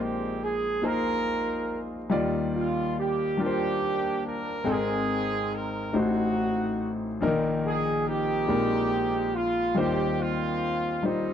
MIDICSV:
0, 0, Header, 1, 3, 480
1, 0, Start_track
1, 0, Key_signature, -3, "major"
1, 0, Tempo, 851064
1, 1188, Time_signature, 6, 3, 24, 8
1, 6392, End_track
2, 0, Start_track
2, 0, Title_t, "Horn section"
2, 0, Program_c, 0, 61
2, 0, Note_on_c, 0, 56, 64
2, 0, Note_on_c, 0, 60, 63
2, 1, Note_on_c, 0, 67, 83
2, 211, Note_off_c, 0, 60, 0
2, 212, Note_off_c, 0, 56, 0
2, 234, Note_off_c, 0, 67, 0
2, 243, Note_on_c, 0, 68, 84
2, 475, Note_off_c, 0, 68, 0
2, 480, Note_on_c, 0, 70, 95
2, 482, Note_on_c, 0, 65, 73
2, 485, Note_on_c, 0, 63, 62
2, 1014, Note_off_c, 0, 70, 0
2, 1173, Note_off_c, 0, 65, 0
2, 1174, Note_off_c, 0, 63, 0
2, 1439, Note_on_c, 0, 65, 72
2, 1657, Note_off_c, 0, 65, 0
2, 1685, Note_on_c, 0, 67, 83
2, 1917, Note_off_c, 0, 67, 0
2, 1929, Note_on_c, 0, 58, 70
2, 1929, Note_on_c, 0, 67, 92
2, 1933, Note_on_c, 0, 62, 68
2, 2376, Note_off_c, 0, 67, 0
2, 2401, Note_on_c, 0, 70, 88
2, 2616, Note_off_c, 0, 58, 0
2, 2618, Note_off_c, 0, 62, 0
2, 2635, Note_off_c, 0, 70, 0
2, 2646, Note_on_c, 0, 60, 75
2, 2647, Note_on_c, 0, 63, 67
2, 2649, Note_on_c, 0, 68, 98
2, 3118, Note_off_c, 0, 68, 0
2, 3130, Note_on_c, 0, 70, 85
2, 3334, Note_off_c, 0, 60, 0
2, 3335, Note_off_c, 0, 63, 0
2, 3359, Note_off_c, 0, 70, 0
2, 3366, Note_on_c, 0, 63, 57
2, 3367, Note_on_c, 0, 60, 57
2, 3371, Note_on_c, 0, 66, 80
2, 3899, Note_off_c, 0, 66, 0
2, 4053, Note_off_c, 0, 63, 0
2, 4054, Note_off_c, 0, 60, 0
2, 4320, Note_on_c, 0, 68, 97
2, 4537, Note_off_c, 0, 68, 0
2, 4552, Note_on_c, 0, 67, 97
2, 4554, Note_on_c, 0, 63, 76
2, 4556, Note_on_c, 0, 60, 80
2, 5246, Note_off_c, 0, 63, 0
2, 5247, Note_off_c, 0, 60, 0
2, 5268, Note_off_c, 0, 67, 0
2, 5274, Note_on_c, 0, 65, 85
2, 5509, Note_off_c, 0, 65, 0
2, 5513, Note_on_c, 0, 67, 96
2, 5515, Note_on_c, 0, 58, 72
2, 5515, Note_on_c, 0, 60, 67
2, 5747, Note_off_c, 0, 60, 0
2, 5748, Note_off_c, 0, 58, 0
2, 5749, Note_off_c, 0, 67, 0
2, 5754, Note_on_c, 0, 60, 66
2, 5755, Note_on_c, 0, 58, 59
2, 5755, Note_on_c, 0, 65, 90
2, 6229, Note_off_c, 0, 65, 0
2, 6230, Note_off_c, 0, 60, 0
2, 6237, Note_on_c, 0, 55, 58
2, 6237, Note_on_c, 0, 60, 50
2, 6239, Note_on_c, 0, 63, 76
2, 6392, Note_off_c, 0, 55, 0
2, 6392, Note_off_c, 0, 58, 0
2, 6392, Note_off_c, 0, 60, 0
2, 6392, Note_off_c, 0, 63, 0
2, 6392, End_track
3, 0, Start_track
3, 0, Title_t, "Grand piano"
3, 0, Program_c, 1, 0
3, 0, Control_c, 1, 64, 127
3, 0, Note_on_c, 1, 34, 54
3, 0, Note_on_c, 1, 46, 47
3, 0, Note_on_c, 1, 56, 58
3, 0, Note_on_c, 1, 58, 69
3, 0, Note_on_c, 1, 63, 55
3, 0, Note_on_c, 1, 72, 70
3, 382, Note_off_c, 1, 58, 0
3, 384, Note_off_c, 1, 63, 0
3, 387, Note_off_c, 1, 56, 0
3, 389, Note_off_c, 1, 72, 0
3, 461, Note_on_c, 1, 58, 55
3, 467, Note_on_c, 1, 63, 49
3, 470, Note_on_c, 1, 68, 56
3, 474, Note_on_c, 1, 72, 58
3, 1103, Note_off_c, 1, 58, 0
3, 1107, Note_off_c, 1, 63, 0
3, 1108, Note_off_c, 1, 68, 0
3, 1110, Note_off_c, 1, 72, 0
3, 1166, Note_off_c, 1, 34, 0
3, 1166, Note_off_c, 1, 46, 0
3, 1182, Note_on_c, 1, 55, 75
3, 1186, Note_on_c, 1, 63, 66
3, 1189, Note_on_c, 1, 39, 65
3, 1190, Note_on_c, 1, 51, 61
3, 1192, Note_on_c, 1, 65, 69
3, 1195, Note_on_c, 1, 74, 85
3, 1196, Control_c, 1, 64, 0
3, 1278, Control_c, 1, 64, 127
3, 1824, Note_off_c, 1, 55, 0
3, 1826, Note_off_c, 1, 63, 0
3, 1829, Note_off_c, 1, 65, 0
3, 1830, Note_off_c, 1, 74, 0
3, 1902, Note_on_c, 1, 55, 57
3, 1908, Note_on_c, 1, 62, 52
3, 1911, Note_on_c, 1, 65, 49
3, 1917, Note_on_c, 1, 70, 52
3, 1949, Note_off_c, 1, 70, 0
3, 1952, Note_on_c, 1, 72, 62
3, 2544, Note_off_c, 1, 55, 0
3, 2547, Note_off_c, 1, 62, 0
3, 2548, Note_off_c, 1, 65, 0
3, 2569, Note_off_c, 1, 72, 0
3, 2606, Note_off_c, 1, 39, 0
3, 2606, Note_off_c, 1, 51, 0
3, 2617, Note_on_c, 1, 56, 73
3, 2621, Note_on_c, 1, 60, 67
3, 2624, Note_on_c, 1, 32, 52
3, 2625, Note_on_c, 1, 44, 53
3, 2626, Note_on_c, 1, 79, 63
3, 2631, Note_on_c, 1, 69, 60
3, 2636, Control_c, 1, 64, 0
3, 2666, Note_off_c, 1, 69, 0
3, 2670, Note_on_c, 1, 70, 77
3, 2723, Control_c, 1, 64, 127
3, 3261, Note_off_c, 1, 56, 0
3, 3263, Note_off_c, 1, 60, 0
3, 3265, Note_off_c, 1, 79, 0
3, 3287, Note_off_c, 1, 70, 0
3, 3323, Note_off_c, 1, 32, 0
3, 3323, Note_off_c, 1, 44, 0
3, 3344, Note_on_c, 1, 57, 53
3, 3346, Note_on_c, 1, 63, 59
3, 3351, Note_on_c, 1, 33, 59
3, 3352, Note_on_c, 1, 45, 56
3, 3354, Note_on_c, 1, 66, 50
3, 3356, Control_c, 1, 64, 0
3, 3359, Note_on_c, 1, 72, 58
3, 3440, Control_c, 1, 64, 127
3, 3983, Note_off_c, 1, 57, 0
3, 3985, Note_off_c, 1, 63, 0
3, 3989, Note_off_c, 1, 66, 0
3, 3991, Note_off_c, 1, 72, 0
3, 4046, Note_off_c, 1, 33, 0
3, 4047, Note_off_c, 1, 45, 0
3, 4064, Note_on_c, 1, 53, 65
3, 4070, Note_on_c, 1, 34, 62
3, 4070, Note_on_c, 1, 46, 67
3, 4070, Note_on_c, 1, 58, 74
3, 4074, Control_c, 1, 64, 0
3, 4074, Note_on_c, 1, 63, 82
3, 4078, Note_on_c, 1, 70, 82
3, 4101, Note_on_c, 1, 51, 88
3, 4102, Note_off_c, 1, 53, 0
3, 4168, Control_c, 1, 64, 127
3, 4706, Note_off_c, 1, 58, 0
3, 4708, Note_off_c, 1, 63, 0
3, 4710, Note_off_c, 1, 70, 0
3, 4722, Note_off_c, 1, 51, 0
3, 4765, Note_off_c, 1, 34, 0
3, 4765, Note_off_c, 1, 46, 0
3, 4777, Note_on_c, 1, 56, 57
3, 4784, Note_on_c, 1, 34, 63
3, 4784, Note_on_c, 1, 60, 51
3, 4786, Note_on_c, 1, 46, 62
3, 4788, Note_on_c, 1, 63, 55
3, 4792, Control_c, 1, 64, 0
3, 4793, Note_on_c, 1, 70, 74
3, 4907, Control_c, 1, 64, 127
3, 5419, Note_off_c, 1, 56, 0
3, 5422, Note_off_c, 1, 60, 0
3, 5424, Note_off_c, 1, 63, 0
3, 5427, Note_off_c, 1, 70, 0
3, 5481, Note_off_c, 1, 34, 0
3, 5482, Note_off_c, 1, 46, 0
3, 5496, Note_on_c, 1, 55, 65
3, 5502, Note_on_c, 1, 63, 67
3, 5504, Note_on_c, 1, 39, 53
3, 5504, Note_on_c, 1, 51, 53
3, 5507, Note_on_c, 1, 65, 60
3, 5511, Control_c, 1, 64, 0
3, 5513, Note_on_c, 1, 72, 77
3, 5611, Control_c, 1, 64, 127
3, 6138, Note_off_c, 1, 55, 0
3, 6141, Note_off_c, 1, 63, 0
3, 6144, Note_off_c, 1, 65, 0
3, 6147, Note_off_c, 1, 72, 0
3, 6220, Note_on_c, 1, 55, 58
3, 6223, Note_on_c, 1, 63, 53
3, 6230, Note_on_c, 1, 65, 50
3, 6234, Note_on_c, 1, 72, 59
3, 6392, Note_off_c, 1, 39, 0
3, 6392, Note_off_c, 1, 51, 0
3, 6392, Note_off_c, 1, 55, 0
3, 6392, Note_off_c, 1, 63, 0
3, 6392, Note_off_c, 1, 65, 0
3, 6392, Note_off_c, 1, 72, 0
3, 6392, End_track
0, 0, End_of_file